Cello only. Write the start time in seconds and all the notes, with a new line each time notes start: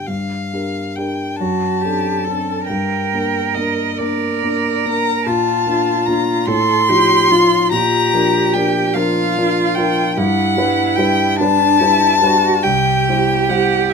1.37 F#4
1.81 G4
2.24 A4
2.67 A#4
3.97 A#4
5.26 F4
6.47 A4
6.89 G4
7.31 F4
7.73 G4
8.96 F4
10.18 E4
11.38 D4
11.79 E4
12.21 F#4
12.63 G4